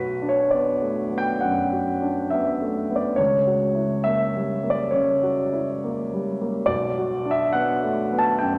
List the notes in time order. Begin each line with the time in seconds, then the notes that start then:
Already playing: B1 F#4 B4
0.22 D4
0.29 C#5
0.51 B3 D5
0.82 A3
1.11 B3
1.18 G5
1.40 F#2 F#5
1.72 F#4
2.02 D4
2.30 B3 E5
2.62 A3
2.90 B3
2.96 D5
3.16 C#2 C#5
3.47 F#4
3.75 E4
4.04 A#3 E5
4.35 G3
4.63 A#3
4.70 D5
4.91 C#3 C#5
5.23 F#4
5.53 E4
5.84 A#3
6.13 G3
6.41 A#3
6.66 B1 D5
6.98 F#4
7.25 D4
7.31 E5
7.53 B3 F#5
7.83 A3
8.12 B3
8.18 A5
8.39 F#2 G5